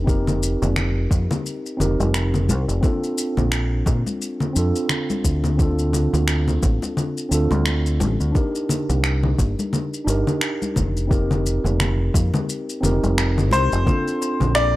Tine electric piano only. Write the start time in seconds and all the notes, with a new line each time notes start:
0.04 C4 D#4 G4
0.09 A#4
1.77 C4 D#4 G4
1.81 A#4
2.81 C4 D4 F4
2.86 A4
4.53 C4 D4 F4
4.58 A4
5.57 C4 D4 F4
5.62 A4
7.29 C4 D4 F4
7.34 A4
8.32 D4 D#4 G4
8.37 A#4
10.05 D4 D#4 G4
10.10 A#4
11.07 C4 D#4 G4
11.12 A#4
12.81 C4 D#4 G4
12.86 A#4
13.85 C4 D4 F4
13.90 A4